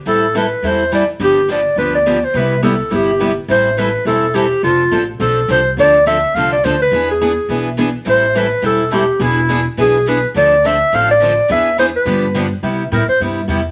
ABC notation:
X:1
M:4/4
L:1/16
Q:"Swing" 1/4=210
K:C
V:1 name="Clarinet"
A4 B4 c4 d2 z2 | G4 d4 B2 d4 c2 | B4 A4 G6 z2 | [K:Am] c4 B4 A4 G4 |
F6 z2 A4 c3 z | d4 e4 f2 d2 c2 B2- | B2 ^G8 z6 | c4 B4 A4 G4 |
E6 z2 ^G4 B3 z | d4 e4 f2 d6 | e4 c2 B8 z2 | [K:C] z4 _B2 c2 z8 |]
V:2 name="Steel-string acoustic guitar"
[E,G,CEA]2 z2 [E,G,CEA]2 z2 [E,G,CEA]2 z2 [E,G,CEA]2 z2 | [D,F,B,DG]2 z2 [D,F,B,DG]2 z2 [D,F,B,DG]2 z2 [D,F,B,DG]2 z2 | [C,G,B,EG]2 z2 [C,G,B,EG]2 z2 [C,G,B,EG]2 z2 [C,G,B,EG]2 z2 | [K:Am] [E,G,CEA]2 z2 [E,G,CEA]2 z2 [E,G,CEA]2 z2 [E,G,CEA]2 z2 |
[F,CDA]2 z2 [F,CDA]2 z2 [F,CDA]2 z2 [F,CDA]2 z2 | [D,F,CDA]2 z2 [D,F,CDA]2 z2 [D,F,CDA]2 z2 [D,F,CDA]2 z2 | [E,B,D^G]2 z2 [E,B,DG]2 z2 [E,B,DG]2 z2 [E,B,DG]2 z2 | [E,G,CEA]2 z2 [E,G,CEA]2 z2 [E,G,CEA]2 z2 [E,G,CEA]2 z2 |
[E,B,D^G]2 z2 [E,B,DG]2 z2 [E,B,DG]2 z2 [E,B,DG]2 z2 | [D,F,CDA]2 z2 [D,F,CDA]2 z2 [D,F,CDA]2 z2 [D,F,CDA]2 z2 | [E,B,D^G]2 z2 [E,B,DG]2 z2 [D,F,B,D=G]2 z2 [D,F,B,DG]2 z2 | [K:C] [C,G,B,EG]2 z2 [C,G,B,EG]2 z2 [C,G,B,EG]2 z2 [C,G,B,EG]2 z2 |]
V:3 name="Steel-string acoustic guitar"
[E,G,CEA]2 z2 [E,G,CEA]2 z2 [E,G,CEA]2 z2 [E,G,CEA]2 z2 | [D,F,B,DG]2 z2 [D,F,B,DG]2 z2 [D,F,B,DG]2 z2 [D,F,B,DG]2 z2 | [C,G,B,EG]2 z2 [C,G,B,EG]2 z2 [C,G,B,EG]2 z2 [C,G,B,EG]2 z2 | [K:Am] [E,G,CEA]2 z2 [E,G,CEA]2 z2 [E,G,CEA]2 z2 [E,G,CEA]2 z2 |
[F,CDA]2 z2 [F,CDA]2 z2 [F,CDA]2 z2 [F,CDA]2 z2 | [D,F,CDA]2 z2 [D,F,CDA]2 z2 [D,F,CDA]2 z2 [D,F,CDA]2 z2 | [E,B,D^GB]2 z2 [E,B,DGB]2 z2 [E,B,DGB]2 z2 [E,B,DGB]2 z2 | [E,G,CEA]2 z2 [E,G,CEA]2 z2 [E,G,CEA]2 z2 [E,G,CEA]2 z2 |
[E,B,D^GB]2 z2 [E,B,DGB]2 z2 [E,B,DGB]2 z2 [E,B,DGB]2 z2 | [D,F,CDA]2 z2 [D,F,CDA]2 z2 [D,F,CDA]2 z2 [D,F,CDA]2 z2 | [E,B,D^GB]2 z2 [E,B,DGB]2 z2 [D,F,B,D=G]2 z2 [D,F,B,DG]2 z2 | [K:C] z16 |]
V:4 name="Upright bass" clef=bass
A,,,8 E,,8 | G,,,8 D,,8 | C,,8 G,,,8 | [K:Am] A,,,8 E,,,8 |
F,,,4 A,,,4 B,,,4 C,,4 | D,,8 C,,4 D,,4 | E,,8 B,,,8 | A,,,8 E,,,8 |
E,,,8 B,,,8 | D,,8 A,,,8 | E,,8 G,,8 | [K:C] C,4 A,,2 z2 G,,4 E,,4 |]